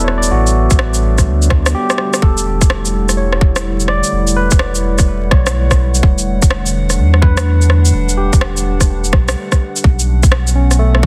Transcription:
0.00 0.30 E1 medium
0.00 9.79 D3 medium
0.00 9.79 G3 medium
0.00 9.79 A3 medium
0.00 2.17 B3 medium
0.00 0.29 E4 medium
0.00 1.67 A4 medium
0.00 1.19 B4 medium
0.00 0.17 D5 medium
0.00 1.48 E5 medium
0.04 1.82 C#5 medium
0.04 cross-stick medium
0.18 1.96 D5 medium
0.23 shaker medium
0.31 0.69 A1 loud
0.31 2.20 D4 medium
0.31 2.14 F#4 medium
0.47 shaker soft
0.70 1.28 A1 loud
0.70 kick loud
0.70 shaker medium
0.79 cross-stick loud
0.94 shaker soft
1.18 kick medium
1.18 cross-stick soft
1.18 shaker medium
1.26 1.74 D2 medium
1.42 shaker soft
1.50 kick loud
1.50 cross-stick medium
1.66 cross-stick loud
1.66 shaker medium
1.75 2.42 G4 medium
1.90 cross-stick medium
1.90 shaker soft
1.98 cross-stick medium
2.14 cross-stick medium
2.14 shaker medium
2.22 4.02 E1 medium
2.22 5.99 E4 medium
2.22 4.05 A4 medium
2.22 11.06 F#5 medium
2.22 kick loud
2.38 shaker soft
2.62 kick loud
2.62 shaker medium
2.70 cross-stick loud
2.85 shaker soft
3.09 cross-stick soft
3.09 shaker medium
3.17 5.00 C#5 medium
3.33 cross-stick medium
3.41 kick loud
3.56 cross-stick loud
3.56 shaker medium
3.80 shaker soft
3.88 5.71 D5 medium
3.88 cross-stick medium
4.04 shaker medium
4.12 4.50 E1 loud
4.27 shaker soft
4.36 6.19 B4 medium
4.51 5.30 E1 loud
4.51 kick loud
4.51 shaker medium
4.59 cross-stick loud
4.75 shaker soft
4.99 kick medium
4.99 cross-stick soft
4.99 shaker medium
5.31 6.02 B1 medium
5.31 7.14 C#5 medium
5.31 kick loud
5.31 cross-stick medium
5.47 cross-stick loud
5.47 shaker medium
5.71 kick medium
5.71 cross-stick medium
5.71 shaker soft
5.95 shaker medium
6.03 6.40 E1 loud
6.03 9.80 D4 medium
6.03 kick loud
6.18 shaker soft
6.42 6.99 E1 loud
6.42 kick loud
6.42 shaker medium
6.51 cross-stick loud
6.66 shaker soft
6.90 cross-stick soft
6.90 shaker medium
6.98 7.92 E2 medium
7.14 cross-stick soft
7.22 9.05 B4 medium
7.22 kick loud
7.37 cross-stick loud
7.37 shaker medium
7.61 shaker soft
7.70 cross-stick medium
7.85 shaker medium
7.93 8.30 E1 loud
8.09 shaker soft
8.17 10.00 G4 medium
8.33 9.14 E1 loud
8.33 kick loud
8.33 shaker medium
8.41 cross-stick loud
8.57 shaker soft
8.81 kick medium
8.81 cross-stick soft
8.81 shaker medium
9.04 shaker soft
9.13 9.35 B1 loud
9.13 kick loud
9.13 cross-stick medium
9.28 cross-stick loud
9.28 shaker medium
9.52 kick medium
9.52 cross-stick medium
9.52 shaker soft
9.76 shaker medium
9.83 11.06 B1 medium
9.83 11.06 B2 medium
9.83 11.06 A3 medium
9.83 11.06 B3 medium
9.83 11.06 C#4 medium
9.83 kick loud
9.99 shaker soft
10.23 kick loud
10.23 shaker medium
10.32 cross-stick loud
10.47 shaker soft
10.55 11.06 C#4 medium
10.71 cross-stick soft
10.71 shaker medium
10.79 11.06 A3 medium
10.95 cross-stick medium
11.03 kick loud

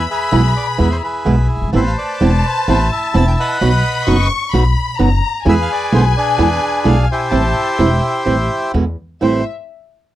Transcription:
0.00 1.50 B5 loud
0.11 0.79 G#4 medium
0.11 0.78 B4 medium
0.11 0.53 E5 loud
0.32 0.52 B1 loud
0.32 0.41 B2 loud
0.32 0.41 E3 loud
0.32 0.41 G#3 loud
0.32 0.41 B3 loud
0.32 0.41 E4 loud
0.57 0.67 D5 medium
0.78 0.99 E2 loud
0.78 0.87 B2 medium
0.78 0.88 E3 loud
0.78 0.88 G#3 loud
0.78 0.88 B3 loud
0.78 0.88 E4 loud
0.78 1.03 E4 medium
0.78 1.03 G#4 medium
0.78 0.90 B4 medium
0.91 0.97 C5 medium
1.04 1.70 E4 medium
1.04 1.70 G#4 medium
1.04 1.47 B4 medium
1.25 1.46 B1 loud
1.25 1.35 B2 loud
1.25 1.35 E3 loud
1.25 1.35 G#3 medium
1.25 1.35 B3 loud
1.25 1.35 E4 loud
1.56 1.61 F#1 medium
1.61 1.67 G1 medium
1.68 1.73 G#1 medium
1.73 1.93 A1 loud
1.73 1.82 E3 loud
1.73 1.82 B3 medium
1.73 1.83 C4 medium
1.73 1.83 E4 loud
1.73 1.97 B4 medium
1.73 2.44 C5 medium
1.73 1.80 E5 medium
1.73 3.57 A5 loud
1.87 1.92 F5 medium
1.98 2.88 B4 medium
1.98 2.46 D5 medium
2.21 2.41 E1 loud
2.21 2.30 E3 loud
2.21 2.30 B3 loud
2.21 2.30 C4 loud
2.21 2.30 E4 loud
2.45 2.68 C5 medium
2.68 2.87 A1 loud
2.68 2.77 E3 medium
2.68 2.77 B3 loud
2.68 2.77 C4 loud
2.68 2.77 E4 loud
2.68 3.58 E4 medium
2.68 2.90 C5 medium
2.92 3.16 E5 medium
3.14 3.34 E1 loud
3.14 3.23 E3 loud
3.14 3.23 B3 loud
3.14 3.23 C4 loud
3.14 3.24 E4 loud
3.14 3.26 A5 loud
3.27 3.32 G5 loud
3.40 4.27 B4 medium
3.40 4.28 D#5 medium
3.40 4.04 F#5 loud
3.61 3.80 B1 loud
3.61 3.70 B2 loud
3.61 3.70 F#3 medium
3.61 3.70 B3 loud
3.61 3.70 D#4 loud
3.61 3.70 F#4 loud
3.61 4.07 B5 loud
4.07 4.27 F#1 loud
4.07 4.16 B2 loud
4.07 4.16 F#3 medium
4.07 4.16 B3 loud
4.07 4.16 D#4 loud
4.07 4.16 F#4 loud
4.07 4.53 C#6 loud
4.53 4.73 B1 loud
4.53 4.62 B2 medium
4.53 4.62 F#3 loud
4.53 4.63 B3 loud
4.53 4.63 D#4 loud
4.53 4.63 F#4 loud
4.53 4.99 B5 loud
4.98 5.19 F#1 loud
4.98 5.08 B2 loud
4.98 5.08 F#3 medium
4.98 5.08 B3 loud
4.98 5.08 D#4 loud
4.98 5.09 F#4 loud
4.98 5.45 A#5 loud
5.45 5.66 E2 loud
5.45 5.54 B2 loud
5.45 5.55 D3 loud
5.45 5.55 G#3 loud
5.45 5.55 B3 loud
5.45 5.55 E4 loud
5.45 6.16 G#4 medium
5.45 6.16 B4 medium
5.45 7.28 G#5 loud
5.49 5.54 E5 loud
5.62 5.72 F5 loud
5.72 5.93 D5 loud
5.92 6.12 B1 loud
5.92 6.01 B2 loud
5.92 6.01 D3 loud
5.92 6.01 G#3 loud
5.92 6.01 B3 loud
5.92 6.02 E4 loud
5.92 6.05 C5 loud
6.17 7.05 D4 medium
6.17 7.05 G#4 medium
6.17 6.88 B4 loud
6.38 6.58 E2 loud
6.38 6.47 B2 medium
6.38 6.47 D3 loud
6.38 6.47 G#3 loud
6.38 6.48 B3 loud
6.38 6.48 E4 loud
6.84 7.05 B1 loud
6.84 6.94 B2 medium
6.84 6.94 D3 loud
6.84 6.94 G#3 loud
6.84 6.94 B3 loud
6.84 6.94 E4 loud
6.84 7.08 F5 loud
7.12 8.72 E4 medium
7.12 8.72 G4 medium
7.12 8.72 C5 loud
7.31 7.52 A1 loud
7.31 7.40 E3 medium
7.31 7.41 G3 loud
7.31 7.41 C4 loud
7.31 7.41 E4 loud
7.31 7.79 A5 loud
7.79 7.99 E1 loud
7.79 7.88 E3 loud
7.79 7.88 G3 loud
7.79 7.88 C4 loud
7.79 7.88 E4 loud
7.79 8.26 G5 medium
8.25 8.46 A1 loud
8.25 8.35 E3 medium
8.25 8.35 G3 loud
8.25 8.35 C4 medium
8.25 8.35 E4 loud
8.74 8.94 E2 loud
8.74 8.83 B2 medium
8.74 8.83 D3 medium
8.74 8.83 G#3 loud
8.74 8.83 B3 loud
8.74 8.84 E4 loud
9.21 9.41 A1 medium
9.21 9.40 A2 loud
9.21 9.40 E3 medium
9.21 9.40 G3 loud
9.21 9.41 C4 loud
9.21 9.41 E4 loud
9.21 9.44 C5 medium
9.21 9.44 E5 medium

